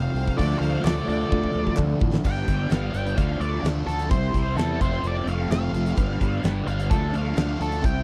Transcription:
Already playing: overdriven electric guitar F2 C3 F3 A3 C4, reed electric piano C4 F4 A4 C5, lead electric guitar C5 F5
0.03 steel-string acoustic guitar C4 F4 A4
0.14 fingered electric bass C2, steel-string acoustic guitar F3 C4 F4 A4, open hi-hat
0.27 kick
0.37 fingered electric bass D2, steel-string acoustic guitar D3 F3 D4 F4 A4, overdriven electric guitar A3, reed electric piano D4 F4 A4 D5, lead electric guitar D5, kick, open hi-hat
0.59 fingered electric bass D2, lead electric guitar C5 F5
0.63 open hi-hat
0.73 steel-string acoustic guitar D4 F4 A4
0.84 fingered electric bass D2, steel-string acoustic guitar D3 F3 D4 F4 A4, reed electric piano D4 F4 A4 D5, lead electric guitar D5, snare, clap, open hi-hat
1.07 fingered electric bass D2, steel-string acoustic guitar F3 D4 F4 A4, lead electric guitar D5, open hi-hat
1.31 fingered electric bass D2, reed electric piano D4 F4 A4 D5, kick
1.42 steel-string acoustic guitar D4 F4 A4, kick
1.52 fingered electric bass D2, steel-string acoustic guitar F3 D4 F4 A4
1.67 kick
1.76 fingered electric bass D2, steel-string acoustic guitar D3 F3 D4 F4 A4, reed electric piano D4 F4 A4 D5, kick, clap
1.88 steel-string acoustic guitar D4 F4 A4
2.00 fingered electric bass A2, steel-string acoustic guitar F3 D4 F4 A4, kick
2.14 snare
2.24 fingered electric bass G1, steel-string acoustic guitar G2 D3 G3 B3 D4 B4, lead electric guitar G5, kick, crash
2.47 fingered electric bass G1, overdriven electric guitar G2 D3, steel-string acoustic guitar G3 B3 D4 B4, kick, closed hi-hat
2.70 fingered electric bass G1, steel-string acoustic guitar G2 D3 G3 B3 D4 B4, lead electric guitar F5, snare, closed hi-hat
2.92 fingered electric bass G1, overdriven electric guitar G2 D3, steel-string acoustic guitar G3 B3 D4 B4, lead electric guitar G5, closed hi-hat
3.05 steel-string acoustic guitar G3 B3 D4 B4, closed hi-hat
3.17 fingered electric bass D2, steel-string acoustic guitar D3 F3 D4 F4 A4, overdriven electric guitar A3, lead electric guitar F5, kick, closed hi-hat
3.30 steel-string acoustic guitar D4 F4 A4
3.39 fingered electric bass D2, overdriven electric guitar D3 F3 A3 D4, lead electric guitar D5, closed hi-hat
3.63 fingered electric bass D2, steel-string acoustic guitar D3 F3 D4 F4 A4, overdriven electric guitar A3, snare, closed hi-hat
3.86 fingered electric bass D2, overdriven electric guitar D3 A3, steel-string acoustic guitar F3 D4 F4, lead electric guitar A4, snare, closed hi-hat
3.98 steel-string acoustic guitar F4 A4, closed hi-hat
4.10 fingered electric bass C2, steel-string acoustic guitar C3 G3 C4 E4 G4, lead electric guitar C5, kick, closed hi-hat
4.33 fingered electric bass C2, overdriven electric guitar C3, steel-string acoustic guitar G3 C4 E4 G4, kick, closed hi-hat
4.57 fingered electric bass E2, steel-string acoustic guitar C3 G3 C4 E4 G4, lead electric guitar A4, snare, closed hi-hat
4.79 fingered electric bass F1, overdriven electric guitar F2 C3 A3, steel-string acoustic guitar F3 C4 F4 A4, lead electric guitar C5, kick, closed hi-hat
4.92 steel-string acoustic guitar C4 F4 A4
5.03 fingered electric bass F1, overdriven electric guitar F2 C3 F3 A3 C4, closed hi-hat
5.07 lead electric guitar D5
5.15 steel-string acoustic guitar C4 F4 A4
5.26 fingered electric bass F1, overdriven electric guitar F2 C3 F3 A3 C4, lead electric guitar F5, closed hi-hat
5.49 fingered electric bass F1, overdriven electric guitar F2 C3 A3, steel-string acoustic guitar F3 C4 F4 A4, lead electric guitar F5, snare, closed hi-hat
5.73 fingered electric bass F1, overdriven electric guitar F2 C3 A3, steel-string acoustic guitar F3 C4 F4 A4, closed hi-hat
5.85 steel-string acoustic guitar C4 F4 A4, closed hi-hat
5.96 fingered electric bass G1, steel-string acoustic guitar G2 D3 G3 B3 D4 B4, kick, closed hi-hat
6.19 fingered electric bass G1, overdriven electric guitar G2 D3, steel-string acoustic guitar G3 B3 D4 B4, kick, closed hi-hat
6.43 fingered electric bass G1, steel-string acoustic guitar G2 D3 G3 B3 D4 B4, snare, closed hi-hat
6.66 fingered electric bass G1, overdriven electric guitar G2 D3, steel-string acoustic guitar G3 B3 D4 B4, lead electric guitar F5, closed hi-hat
6.78 steel-string acoustic guitar G3 B3 D4 B4, closed hi-hat
6.90 fingered electric bass D2, steel-string acoustic guitar D3 F3 D4 F4 A4, overdriven electric guitar A3, lead electric guitar A4, kick, closed hi-hat
7.02 steel-string acoustic guitar D4 F4 A4
7.13 fingered electric bass D2, overdriven electric guitar D3 F3 A3 D4, lead electric guitar F5, closed hi-hat
7.36 fingered electric bass D2, steel-string acoustic guitar D3 F3 D4 F4 A4, overdriven electric guitar A3, lead electric guitar F5, snare, closed hi-hat
7.59 fingered electric bass D2, overdriven electric guitar D3 A3, steel-string acoustic guitar F3 D4 F4 A4, lead electric guitar A4, closed hi-hat
7.70 steel-string acoustic guitar D4 F4 A4, closed hi-hat
7.81 fingered electric bass C2, steel-string acoustic guitar C3 G3 C4 E4 G4, kick, closed hi-hat
7.85 lead electric guitar G5

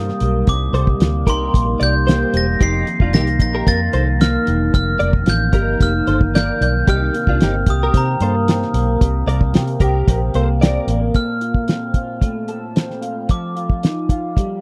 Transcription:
Already playing: fingered electric bass G2, clean electric guitar C3 G3 A#3 D#4, glockenspiel D#6
0.08 snare
0.20 fingered electric bass B1, clean electric guitar G3, closed hi-hat
0.47 fingered electric bass C2, clean electric guitar C3, glockenspiel D6, kick, closed hi-hat
0.73 fingered electric bass C2, clean electric guitar G3 A4 C5, closed hi-hat
0.87 kick
1.00 fingered electric bass D2, clean electric guitar A#3, snare, closed hi-hat
1.26 fingered electric bass C2, clean electric guitar D#4 G4 A#4, glockenspiel C6, kick, closed hi-hat
1.54 fingered electric bass A#1, clean electric guitar A#3, kick, closed hi-hat
1.80 fingered electric bass C2, clean electric guitar G3 A#4 D5, glockenspiel G6, closed hi-hat
2.07 clean electric guitar A#3 G4 C5, snare, closed hi-hat
2.34 fingered electric bass E1, clean electric guitar G3, glockenspiel A#6, closed hi-hat
2.60 fingered electric bass F1, clean electric guitar F2 D#4 G4, glockenspiel C7, kick, closed hi-hat
2.86 clean electric guitar D#3, closed hi-hat
3.00 fingered electric bass F1, clean electric guitar D4 F4, kick
3.13 fingered electric bass C2, clean electric guitar A#3 D#4 G4, glockenspiel A#6, snare, closed hi-hat
3.27 closed hi-hat
3.40 fingered electric bass A#1, clean electric guitar D#4, glockenspiel A#6, kick, closed hi-hat
3.55 clean electric guitar G4 A#4
3.66 fingered electric bass F2, clean electric guitar A#3, glockenspiel A6, kick, closed hi-hat
3.93 fingered electric bass C2, clean electric guitar D#3 A4 C5, closed hi-hat
4.19 clean electric guitar A#3, glockenspiel F6, snare, closed hi-hat
4.46 fingered electric bass E1, clean electric guitar D#3, closed hi-hat
4.73 fingered electric bass F1, clean electric guitar F2, glockenspiel F6, kick, closed hi-hat
4.99 fingered electric bass F1, clean electric guitar D#3 A#4 D5, closed hi-hat
5.13 kick
5.26 fingered electric bass A1, clean electric guitar A#3, glockenspiel G6, snare, closed hi-hat
5.53 fingered electric bass G1, clean electric guitar D#4 G4 A#4, kick, closed hi-hat
5.80 fingered electric bass F1, clean electric guitar A#3, glockenspiel F6, kick, closed hi-hat
6.07 fingered electric bass G1, clean electric guitar D#3 A4 C5, closed hi-hat
6.21 kick
6.34 clean electric guitar A#3 A#4 D5, glockenspiel G6, snare, closed hi-hat
6.60 fingered electric bass B1, clean electric guitar D#3, glockenspiel G6, closed hi-hat
6.86 fingered electric bass C2, clean electric guitar C3 D#4 G4, glockenspiel F6, kick, closed hi-hat
7.13 clean electric guitar A#3, closed hi-hat
7.27 fingered electric bass C2, clean electric guitar D4 F4, kick
7.41 fingered electric bass G1, clean electric guitar C4 D#4 G4, snare, closed hi-hat
7.66 fingered electric bass C2, clean electric guitar G4, kick, closed hi-hat
7.70 glockenspiel D#6
7.83 clean electric guitar G4 A#4
7.93 fingered electric bass C3, clean electric guitar C4, glockenspiel A#5, kick, closed hi-hat
8.20 fingered electric bass G2, clean electric guitar A#3 A4 C5, closed hi-hat
8.48 clean electric guitar C4, snare, closed hi-hat
8.62 snare
8.74 fingered electric bass B1, clean electric guitar A#3, closed hi-hat
9.01 fingered electric bass C2, clean electric guitar C3, kick, closed hi-hat
9.27 fingered electric bass C2, clean electric guitar A#3 A#4 D5, closed hi-hat
9.41 kick
9.54 fingered electric bass C3, clean electric guitar C4, snare, closed hi-hat
9.67 closed hi-hat
9.80 fingered electric bass C2, clean electric guitar G4 A#4, kick, closed hi-hat
10.07 fingered electric bass A#1, clean electric guitar C4, kick, closed hi-hat
10.34 fingered electric bass C2, clean electric guitar A#3 A4 C5, closed hi-hat
10.61 clean electric guitar C4 A#4 D5, snare, closed hi-hat
10.87 fingered electric bass A1, clean electric guitar A#3, closed hi-hat
11.14 clean electric guitar A#2 A4, glockenspiel F6, kick, closed hi-hat
11.41 clean electric guitar F4, closed hi-hat
11.54 kick
11.68 clean electric guitar C4, snare, closed hi-hat
11.94 clean electric guitar F4, kick, closed hi-hat
12.21 clean electric guitar A3, kick, closed hi-hat
12.48 clean electric guitar A4, closed hi-hat
12.76 clean electric guitar C4, snare, closed hi-hat
12.90 snare
13.01 clean electric guitar F4, closed hi-hat
13.29 clean electric guitar F3 A4, glockenspiel D6, kick, closed hi-hat
13.55 clean electric guitar F4, closed hi-hat
13.70 kick
13.83 clean electric guitar D#4, snare, closed hi-hat
14.09 clean electric guitar F4, kick, closed hi-hat
14.37 clean electric guitar G3, kick, closed hi-hat

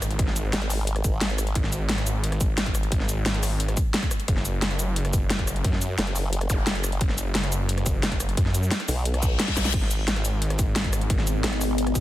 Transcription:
Already playing: detuned saw bass G#1, impact
0.02 cross-stick, closed hi-hat, shaker
0.11 closed hi-hat
0.19 detuned saw bass G#1, kick, closed hi-hat
0.28 snare
0.36 closed hi-hat, shaker
0.53 wobble bass G#1, snare, closed hi-hat
0.62 cross-stick, closed hi-hat
0.70 cross-stick, open hi-hat, shaker
0.87 closed hi-hat
0.96 cross-stick, closed hi-hat
1.04 wobble bass G#1, kick, closed hi-hat, shaker
1.21 snare, closed hi-hat
1.30 closed hi-hat
1.38 cross-stick, closed hi-hat, shaker
1.47 closed hi-hat
1.55 detuned saw bass G#1, kick, closed hi-hat
1.64 snare
1.72 closed hi-hat, shaker
1.90 snare, closed hi-hat
1.98 cross-stick, closed hi-hat
2.07 closed hi-hat, shaker
2.24 closed hi-hat
2.32 cross-stick, closed hi-hat
2.41 kick, closed hi-hat, shaker
2.58 snare, closed hi-hat
2.66 kick, closed hi-hat
2.75 cross-stick, closed hi-hat, shaker
2.83 closed hi-hat
2.92 detuned saw bass G#1, kick, closed hi-hat
3.00 snare
3.09 closed hi-hat, shaker
3.26 detuned saw bass G#1, snare, closed hi-hat
3.34 cross-stick, closed hi-hat
3.43 cross-stick, open hi-hat, shaker
3.60 closed hi-hat
3.69 cross-stick, closed hi-hat
3.77 kick, closed hi-hat, shaker
3.94 snare, closed hi-hat
4.03 kick, closed hi-hat
4.11 cross-stick, closed hi-hat, shaker
4.20 closed hi-hat
4.28 detuned saw bass F#1, kick, closed hi-hat
4.37 snare
4.45 closed hi-hat, shaker
4.62 snare, closed hi-hat
4.71 cross-stick, closed hi-hat
4.79 closed hi-hat, shaker
4.96 closed hi-hat
5.05 cross-stick, closed hi-hat
5.13 kick, closed hi-hat, shaker
5.30 snare, closed hi-hat
5.39 kick, closed hi-hat
5.47 cross-stick, closed hi-hat, shaker
5.56 closed hi-hat
5.64 detuned saw bass F#2, kick, closed hi-hat
5.73 snare
5.82 closed hi-hat, shaker
5.99 wobble bass F#1, snare, closed hi-hat
6.07 cross-stick, closed hi-hat
6.16 cross-stick, open hi-hat, shaker
6.33 closed hi-hat
6.41 cross-stick, closed hi-hat
6.50 wobble bass F#1, kick, closed hi-hat, zap, shaker
6.67 snare, closed hi-hat
6.75 closed hi-hat
6.84 cross-stick, closed hi-hat, shaker
6.92 closed hi-hat
7.01 detuned saw bass F#1, kick, closed hi-hat
7.09 snare
7.18 closed hi-hat, shaker
7.35 snare, closed hi-hat
7.44 cross-stick, closed hi-hat
7.52 closed hi-hat, shaker
7.69 closed hi-hat
7.78 cross-stick, closed hi-hat
7.86 kick, closed hi-hat, shaker
8.03 snare, closed hi-hat
8.12 kick, closed hi-hat
8.20 cross-stick, closed hi-hat, shaker
8.29 closed hi-hat
8.37 detuned saw bass F#2, kick, closed hi-hat
8.46 snare
8.54 closed hi-hat, shaker
8.63 shaker
8.71 snare, closed hi-hat
8.80 cross-stick, closed hi-hat
8.88 wobble bass B1, cross-stick, open hi-hat, shaker
9.05 closed hi-hat, reverse cymbal
9.14 cross-stick, closed hi-hat
9.23 kick, closed hi-hat, shaker
9.40 snare, closed hi-hat
9.48 kick, snare, closed hi-hat
9.57 detuned saw bass B1, snare, closed hi-hat, shaker
9.65 snare, closed hi-hat, shaker
9.74 detuned saw bass G#1, ambient pad B3 D#4 G#4 D#5, kick, closed hi-hat, crash
9.82 snare
9.91 closed hi-hat, shaker
10.08 snare, closed hi-hat
10.16 cross-stick, closed hi-hat
10.25 closed hi-hat, shaker
10.42 closed hi-hat
10.50 cross-stick, closed hi-hat
10.59 kick, closed hi-hat, shaker
10.76 snare, closed hi-hat
10.84 kick, closed hi-hat
10.93 cross-stick, closed hi-hat, shaker
11.01 closed hi-hat
11.10 detuned saw bass G#1, kick, closed hi-hat
11.19 snare
11.27 closed hi-hat, shaker
11.44 wobble bass G#1, snare, closed hi-hat
11.53 cross-stick, closed hi-hat
11.61 cross-stick, open hi-hat, shaker
11.78 closed hi-hat
11.87 cross-stick, closed hi-hat
11.95 wobble bass G#1, kick, closed hi-hat, shaker

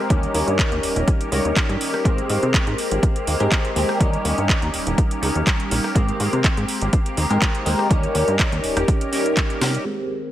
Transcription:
0.00 clean electric guitar A#3 C4
0.09 analog synth bass D#2, clean electric guitar D#3 A#3 C#4 G4, analog polysynth G3 C#4 D#4 A#4, kick, closed hi-hat
0.23 closed hi-hat
0.34 analog synth bass D#2, clean electric guitar D#3 A#3 C#4 G4, open hi-hat
0.47 analog synth bass G2, closed hi-hat
0.58 clean electric guitar D#3 A#3, kick, clap, closed hi-hat
0.71 analog synth bass D#2, clean electric guitar A#3 C#4 G4, closed hi-hat
0.83 analog synth bass D#1, open hi-hat
0.95 analog synth bass D#1, clean electric guitar A#3 C#4 G4, closed hi-hat
1.08 kick, closed hi-hat
1.20 clean electric guitar A#3 C#4 G4, closed hi-hat
1.31 analog synth bass C#2, clean electric guitar D#3 A#3 C#4 G4, analog polysynth G3 C#4 D#4 A#4, open hi-hat
1.45 analog synth bass D#2, closed hi-hat
1.56 clean electric guitar D#3 A#3 C#4 G4, kick, clap, closed hi-hat
1.69 analog synth bass G2, closed hi-hat
1.80 clean electric guitar D#3 A#3 C#4 G4, open hi-hat
1.93 clean electric guitar A#3 C#4 G4, cross-stick
2.04 analog synth bass G#2, clean electric guitar D#3 A#3 C4 G4, analog polysynth G#3 C4 G4 A#4, kick, closed hi-hat
2.18 closed hi-hat
2.29 analog synth bass G#2, clean electric guitar D#3 A#3 C4 G4, open hi-hat
2.43 analog synth bass C3, closed hi-hat
2.54 clean electric guitar D#3 A#3 C4 G4, kick, clap, closed hi-hat
2.66 analog synth bass G#2, clean electric guitar A#3 C4 G4, closed hi-hat
2.78 open hi-hat
2.91 analog synth bass G#1, clean electric guitar A#3 C4 G4, closed hi-hat
3.03 kick, closed hi-hat
3.15 clean electric guitar A#3 C4 G4, closed hi-hat
3.27 analog synth bass D#2, clean electric guitar D#3 A#3 C4 G4, open hi-hat
3.40 analog synth bass G#2, analog polysynth G#3 C4 G4 A#4, closed hi-hat
3.51 clean electric guitar D#3 A#3 C4 G4, kick, clap, closed hi-hat
3.65 closed hi-hat
3.75 analog synth bass D#2, clean electric guitar D#3 A#3 C4 G4, analog polysynth G#3 C4 G4 A#4, open hi-hat
3.88 clean electric guitar A#3 C4 G4, cross-stick
3.99 analog synth bass D#2, clean electric guitar D#3 A#3 C#4 G4, analog polysynth G3 C#4 D#4 A#4, kick, closed hi-hat
4.13 closed hi-hat
4.24 analog synth bass D#2, clean electric guitar D#3 A#3 C#4 G4, open hi-hat
4.38 analog synth bass G2, closed hi-hat
4.49 clean electric guitar D#3 A#3 C#4 G4, kick, clap, closed hi-hat
4.61 analog synth bass D#2, clean electric guitar A#3 C#4 G4, closed hi-hat
4.74 analog synth bass D#1, open hi-hat
4.86 analog synth bass D#1, clean electric guitar A#3 C#4 G4, closed hi-hat
4.98 kick, closed hi-hat
5.10 clean electric guitar A#3 C#4 G4, closed hi-hat
5.21 analog synth bass C#2, clean electric guitar D#3 A#3 C#4 G4, analog polysynth G3 C#4 D#4 A#4, open hi-hat
5.35 analog synth bass D#2, closed hi-hat
5.46 clean electric guitar D#3 A#3 C#4 G4, kick, clap, closed hi-hat
5.60 closed hi-hat
5.70 analog synth bass A#1, clean electric guitar D#3 A#3 C#4 G4, open hi-hat
5.83 clean electric guitar A#3 C#4 G4, cross-stick
5.95 analog synth bass G#2, clean electric guitar D#3 A#3 C4 G4, analog polysynth G#3 C4 G4 A#4, kick, closed hi-hat
6.08 closed hi-hat
6.19 analog synth bass G#2, clean electric guitar D#3 A#3 C4 G4, open hi-hat
6.33 analog synth bass C3, closed hi-hat
6.44 clean electric guitar D#3 A#3 C4 G4, kick, clap, closed hi-hat
6.56 analog synth bass G#2, clean electric guitar A#3 C4 G4, closed hi-hat
6.68 open hi-hat
6.81 analog synth bass G#1, clean electric guitar A#3 C4 G4, closed hi-hat
6.93 kick, closed hi-hat
7.05 clean electric guitar A#3 C4 G4, closed hi-hat
7.16 analog synth bass D#2, clean electric guitar D#3 A#3 C4 G4, open hi-hat
7.30 analog synth bass G#2, analog polysynth G#3 C4 G4 A#4, closed hi-hat
7.41 clean electric guitar D#3 A#3 C4 G4, kick, clap, closed hi-hat
7.55 closed hi-hat
7.65 analog synth bass D#2, clean electric guitar D#3 A#3 C4 G4, analog polysynth G#3 C4 G4 A#4, open hi-hat
7.78 clean electric guitar A#3 C4 G4, cross-stick
7.89 analog synth bass D#2, analog polysynth G3 C#4 D#4 A#4, clean electric guitar A#3 C#4 G4, kick, closed hi-hat
8.03 closed hi-hat
8.14 analog synth bass D#2, clean electric guitar A#3 C#4 G4, open hi-hat
8.28 analog synth bass G2, closed hi-hat
8.39 clean electric guitar A#3 C#4 G4, kick, clap, closed hi-hat
8.52 analog synth bass D#2, clean electric guitar C#4 G4, closed hi-hat
8.64 analog synth bass D#1, open hi-hat
8.76 analog synth bass D#1, clean electric guitar C#4 G4, cross-stick, closed hi-hat
8.88 kick, closed hi-hat
9.00 clean electric guitar C#4 G4, closed hi-hat
9.12 analog polysynth G3 C#4 D#4 A#4, clean electric guitar A#3 C#4 G4, open hi-hat
9.26 closed hi-hat
9.36 clean electric guitar A#3 C#4, kick, clap, closed hi-hat
9.50 closed hi-hat
9.60 analog synth bass C3, clean electric guitar A#3 C#4 G4, snare, open hi-hat
9.73 clean electric guitar C#4 G4, closed hi-hat
9.84 clean electric guitar D#3 A#3 C4, analog polysynth G#3 C4 G4 A#4

